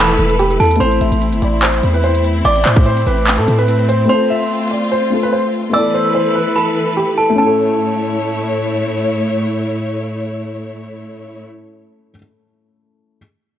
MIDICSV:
0, 0, Header, 1, 7, 480
1, 0, Start_track
1, 0, Key_signature, 0, "minor"
1, 0, Tempo, 410959
1, 940, Time_signature, 4, 2, 24, 8
1, 15870, End_track
2, 0, Start_track
2, 0, Title_t, "Synth bell"
2, 0, Program_c, 0, 98
2, 0, Note_on_c, 0, 83, 77
2, 655, Note_off_c, 0, 83, 0
2, 701, Note_on_c, 0, 81, 92
2, 929, Note_off_c, 0, 81, 0
2, 937, Note_on_c, 0, 84, 100
2, 1852, Note_off_c, 0, 84, 0
2, 2861, Note_on_c, 0, 86, 92
2, 3774, Note_off_c, 0, 86, 0
2, 4781, Note_on_c, 0, 84, 101
2, 5694, Note_off_c, 0, 84, 0
2, 6701, Note_on_c, 0, 88, 108
2, 7614, Note_off_c, 0, 88, 0
2, 7658, Note_on_c, 0, 83, 71
2, 8336, Note_off_c, 0, 83, 0
2, 8381, Note_on_c, 0, 81, 84
2, 8609, Note_off_c, 0, 81, 0
2, 8622, Note_on_c, 0, 81, 84
2, 10015, Note_off_c, 0, 81, 0
2, 15870, End_track
3, 0, Start_track
3, 0, Title_t, "Grand piano"
3, 0, Program_c, 1, 0
3, 0, Note_on_c, 1, 69, 84
3, 433, Note_off_c, 1, 69, 0
3, 460, Note_on_c, 1, 67, 85
3, 685, Note_off_c, 1, 67, 0
3, 702, Note_on_c, 1, 69, 86
3, 926, Note_off_c, 1, 69, 0
3, 941, Note_on_c, 1, 72, 102
3, 1165, Note_off_c, 1, 72, 0
3, 1182, Note_on_c, 1, 76, 70
3, 1633, Note_off_c, 1, 76, 0
3, 1660, Note_on_c, 1, 74, 71
3, 1885, Note_off_c, 1, 74, 0
3, 1901, Note_on_c, 1, 72, 77
3, 2246, Note_off_c, 1, 72, 0
3, 2265, Note_on_c, 1, 71, 81
3, 2372, Note_off_c, 1, 71, 0
3, 2381, Note_on_c, 1, 72, 83
3, 2605, Note_off_c, 1, 72, 0
3, 2862, Note_on_c, 1, 74, 109
3, 3086, Note_off_c, 1, 74, 0
3, 3099, Note_on_c, 1, 72, 78
3, 3322, Note_off_c, 1, 72, 0
3, 3340, Note_on_c, 1, 72, 88
3, 3565, Note_off_c, 1, 72, 0
3, 3582, Note_on_c, 1, 71, 81
3, 3927, Note_off_c, 1, 71, 0
3, 3949, Note_on_c, 1, 69, 80
3, 4173, Note_off_c, 1, 69, 0
3, 4187, Note_on_c, 1, 71, 85
3, 4519, Note_off_c, 1, 71, 0
3, 4540, Note_on_c, 1, 72, 81
3, 4764, Note_off_c, 1, 72, 0
3, 4782, Note_on_c, 1, 72, 96
3, 5006, Note_off_c, 1, 72, 0
3, 5024, Note_on_c, 1, 76, 85
3, 5474, Note_off_c, 1, 76, 0
3, 5503, Note_on_c, 1, 74, 66
3, 5726, Note_off_c, 1, 74, 0
3, 5743, Note_on_c, 1, 72, 86
3, 6087, Note_off_c, 1, 72, 0
3, 6109, Note_on_c, 1, 71, 81
3, 6214, Note_off_c, 1, 71, 0
3, 6221, Note_on_c, 1, 72, 79
3, 6445, Note_off_c, 1, 72, 0
3, 6697, Note_on_c, 1, 74, 104
3, 6923, Note_off_c, 1, 74, 0
3, 6940, Note_on_c, 1, 72, 74
3, 7162, Note_off_c, 1, 72, 0
3, 7179, Note_on_c, 1, 72, 71
3, 7404, Note_off_c, 1, 72, 0
3, 7421, Note_on_c, 1, 71, 79
3, 7645, Note_off_c, 1, 71, 0
3, 7661, Note_on_c, 1, 69, 80
3, 8112, Note_off_c, 1, 69, 0
3, 8139, Note_on_c, 1, 67, 81
3, 8364, Note_off_c, 1, 67, 0
3, 8382, Note_on_c, 1, 69, 83
3, 8603, Note_off_c, 1, 69, 0
3, 8621, Note_on_c, 1, 69, 82
3, 10014, Note_off_c, 1, 69, 0
3, 15870, End_track
4, 0, Start_track
4, 0, Title_t, "String section"
4, 0, Program_c, 2, 48
4, 0, Note_on_c, 2, 52, 87
4, 0, Note_on_c, 2, 64, 76
4, 0, Note_on_c, 2, 69, 78
4, 0, Note_on_c, 2, 71, 96
4, 921, Note_off_c, 2, 69, 0
4, 921, Note_off_c, 2, 71, 0
4, 922, Note_off_c, 2, 52, 0
4, 922, Note_off_c, 2, 64, 0
4, 942, Note_on_c, 2, 57, 81
4, 942, Note_on_c, 2, 60, 76
4, 942, Note_on_c, 2, 64, 89
4, 4743, Note_off_c, 2, 64, 0
4, 4783, Note_on_c, 2, 65, 92
4, 6655, Note_off_c, 2, 57, 0
4, 6655, Note_off_c, 2, 60, 0
4, 6683, Note_off_c, 2, 65, 0
4, 6701, Note_on_c, 2, 71, 93
4, 6702, Note_on_c, 2, 64, 73
4, 6702, Note_on_c, 2, 69, 75
4, 6703, Note_on_c, 2, 52, 81
4, 8602, Note_off_c, 2, 52, 0
4, 8602, Note_off_c, 2, 64, 0
4, 8602, Note_off_c, 2, 69, 0
4, 8602, Note_off_c, 2, 71, 0
4, 8620, Note_on_c, 2, 45, 81
4, 8620, Note_on_c, 2, 64, 76
4, 8621, Note_on_c, 2, 57, 70
4, 8621, Note_on_c, 2, 73, 86
4, 13348, Note_off_c, 2, 45, 0
4, 13348, Note_off_c, 2, 57, 0
4, 13348, Note_off_c, 2, 64, 0
4, 13348, Note_off_c, 2, 73, 0
4, 15870, End_track
5, 0, Start_track
5, 0, Title_t, "Grand piano"
5, 0, Program_c, 3, 0
5, 0, Control_c, 3, 64, 127
5, 0, Note_on_c, 3, 57, 63
5, 0, Note_on_c, 3, 59, 59
5, 0, Note_on_c, 3, 64, 60
5, 0, Note_on_c, 3, 69, 76
5, 874, Note_off_c, 3, 57, 0
5, 892, Note_on_c, 3, 57, 70
5, 894, Note_off_c, 3, 59, 0
5, 911, Note_off_c, 3, 64, 0
5, 925, Note_on_c, 3, 60, 58
5, 928, Note_off_c, 3, 69, 0
5, 957, Control_c, 3, 64, 0
5, 957, Note_on_c, 3, 64, 59
5, 990, Note_on_c, 3, 69, 72
5, 1129, Control_c, 3, 64, 127
5, 4709, Note_off_c, 3, 57, 0
5, 4726, Note_off_c, 3, 60, 0
5, 4734, Note_on_c, 3, 57, 62
5, 4742, Note_off_c, 3, 64, 0
5, 4759, Note_off_c, 3, 69, 0
5, 4766, Note_on_c, 3, 60, 60
5, 4797, Control_c, 3, 64, 0
5, 4799, Note_on_c, 3, 65, 57
5, 4832, Note_on_c, 3, 69, 68
5, 4974, Control_c, 3, 64, 127
5, 5933, Note_off_c, 3, 57, 0
5, 5949, Note_off_c, 3, 60, 0
5, 5958, Note_on_c, 3, 57, 52
5, 5966, Note_off_c, 3, 65, 0
5, 5975, Note_on_c, 3, 60, 47
5, 5983, Note_off_c, 3, 69, 0
5, 5990, Note_on_c, 3, 65, 49
5, 6007, Note_on_c, 3, 69, 56
5, 6635, Note_off_c, 3, 57, 0
5, 6653, Note_on_c, 3, 57, 60
5, 6685, Note_on_c, 3, 59, 56
5, 6698, Note_off_c, 3, 60, 0
5, 6705, Note_off_c, 3, 65, 0
5, 6714, Note_off_c, 3, 69, 0
5, 6715, Control_c, 3, 64, 0
5, 6718, Note_on_c, 3, 64, 57
5, 6751, Note_on_c, 3, 69, 72
5, 6917, Control_c, 3, 64, 127
5, 8505, Note_off_c, 3, 57, 0
5, 8523, Note_on_c, 3, 57, 78
5, 8574, Note_off_c, 3, 59, 0
5, 8588, Note_on_c, 3, 61, 71
5, 8591, Note_off_c, 3, 64, 0
5, 8608, Note_off_c, 3, 69, 0
5, 8635, Control_c, 3, 64, 0
5, 8654, Note_on_c, 3, 64, 68
5, 8719, Note_on_c, 3, 69, 84
5, 8859, Control_c, 3, 64, 127
5, 14117, Note_off_c, 3, 57, 0
5, 14150, Note_off_c, 3, 61, 0
5, 14182, Note_off_c, 3, 64, 0
5, 14215, Note_off_c, 3, 69, 0
5, 15395, Control_c, 3, 64, 0
5, 15870, End_track
6, 0, Start_track
6, 0, Title_t, "808-style bass"
6, 0, Program_c, 4, 38
6, 0, Note_on_c, 4, 28, 110
6, 201, Note_off_c, 4, 28, 0
6, 220, Note_on_c, 4, 28, 105
6, 681, Note_off_c, 4, 28, 0
6, 700, Note_on_c, 4, 40, 102
6, 931, Note_off_c, 4, 40, 0
6, 941, Note_on_c, 4, 33, 111
6, 1171, Note_off_c, 4, 33, 0
6, 1180, Note_on_c, 4, 33, 102
6, 1303, Note_off_c, 4, 33, 0
6, 1308, Note_on_c, 4, 33, 109
6, 1547, Note_on_c, 4, 31, 98
6, 1565, Note_off_c, 4, 33, 0
6, 1655, Note_off_c, 4, 31, 0
6, 1661, Note_on_c, 4, 33, 105
6, 2122, Note_off_c, 4, 33, 0
6, 2141, Note_on_c, 4, 40, 106
6, 2832, Note_off_c, 4, 40, 0
6, 2861, Note_on_c, 4, 33, 114
6, 3091, Note_off_c, 4, 33, 0
6, 3102, Note_on_c, 4, 45, 102
6, 3562, Note_off_c, 4, 45, 0
6, 3582, Note_on_c, 4, 33, 108
6, 3949, Note_on_c, 4, 45, 100
6, 3967, Note_off_c, 4, 33, 0
6, 4056, Note_off_c, 4, 45, 0
6, 4063, Note_on_c, 4, 45, 105
6, 4753, Note_off_c, 4, 45, 0
6, 15870, End_track
7, 0, Start_track
7, 0, Title_t, "Drums"
7, 108, Note_on_c, 9, 42, 53
7, 220, Note_off_c, 9, 42, 0
7, 220, Note_on_c, 9, 42, 45
7, 337, Note_off_c, 9, 42, 0
7, 347, Note_on_c, 9, 42, 74
7, 460, Note_off_c, 9, 42, 0
7, 460, Note_on_c, 9, 42, 71
7, 577, Note_off_c, 9, 42, 0
7, 588, Note_on_c, 9, 42, 61
7, 701, Note_off_c, 9, 42, 0
7, 701, Note_on_c, 9, 42, 47
7, 765, Note_off_c, 9, 42, 0
7, 765, Note_on_c, 9, 42, 57
7, 828, Note_off_c, 9, 42, 0
7, 828, Note_on_c, 9, 42, 64
7, 885, Note_off_c, 9, 42, 0
7, 885, Note_on_c, 9, 42, 76
7, 941, Note_off_c, 9, 42, 0
7, 941, Note_on_c, 9, 42, 84
7, 1058, Note_off_c, 9, 42, 0
7, 1069, Note_on_c, 9, 42, 51
7, 1181, Note_off_c, 9, 42, 0
7, 1181, Note_on_c, 9, 42, 82
7, 1298, Note_off_c, 9, 42, 0
7, 1309, Note_on_c, 9, 42, 61
7, 1422, Note_off_c, 9, 42, 0
7, 1422, Note_on_c, 9, 42, 74
7, 1538, Note_off_c, 9, 42, 0
7, 1549, Note_on_c, 9, 42, 49
7, 1661, Note_off_c, 9, 42, 0
7, 1661, Note_on_c, 9, 42, 80
7, 1778, Note_off_c, 9, 42, 0
7, 1901, Note_on_c, 9, 39, 103
7, 1901, Note_on_c, 9, 42, 60
7, 2018, Note_off_c, 9, 39, 0
7, 2018, Note_off_c, 9, 42, 0
7, 2029, Note_on_c, 9, 42, 55
7, 2141, Note_off_c, 9, 42, 0
7, 2141, Note_on_c, 9, 42, 72
7, 2258, Note_off_c, 9, 42, 0
7, 2268, Note_on_c, 9, 42, 46
7, 2380, Note_off_c, 9, 42, 0
7, 2380, Note_on_c, 9, 42, 68
7, 2497, Note_off_c, 9, 42, 0
7, 2508, Note_on_c, 9, 42, 61
7, 2621, Note_off_c, 9, 42, 0
7, 2621, Note_on_c, 9, 42, 72
7, 2738, Note_off_c, 9, 42, 0
7, 2861, Note_on_c, 9, 42, 89
7, 2978, Note_off_c, 9, 42, 0
7, 2988, Note_on_c, 9, 42, 51
7, 3101, Note_on_c, 9, 39, 97
7, 3102, Note_off_c, 9, 42, 0
7, 3102, Note_on_c, 9, 42, 78
7, 3218, Note_off_c, 9, 39, 0
7, 3218, Note_off_c, 9, 42, 0
7, 3228, Note_on_c, 9, 42, 60
7, 3229, Note_on_c, 9, 36, 92
7, 3341, Note_off_c, 9, 42, 0
7, 3341, Note_on_c, 9, 42, 73
7, 3346, Note_off_c, 9, 36, 0
7, 3458, Note_off_c, 9, 42, 0
7, 3469, Note_on_c, 9, 42, 48
7, 3582, Note_off_c, 9, 42, 0
7, 3582, Note_on_c, 9, 42, 79
7, 3699, Note_off_c, 9, 42, 0
7, 3822, Note_on_c, 9, 39, 103
7, 3822, Note_on_c, 9, 42, 64
7, 3939, Note_off_c, 9, 39, 0
7, 3939, Note_off_c, 9, 42, 0
7, 3949, Note_on_c, 9, 42, 54
7, 4062, Note_off_c, 9, 42, 0
7, 4062, Note_on_c, 9, 42, 71
7, 4179, Note_off_c, 9, 42, 0
7, 4190, Note_on_c, 9, 42, 46
7, 4301, Note_off_c, 9, 42, 0
7, 4301, Note_on_c, 9, 42, 66
7, 4418, Note_off_c, 9, 42, 0
7, 4429, Note_on_c, 9, 42, 60
7, 4542, Note_off_c, 9, 42, 0
7, 4542, Note_on_c, 9, 42, 70
7, 4659, Note_off_c, 9, 42, 0
7, 15870, End_track
0, 0, End_of_file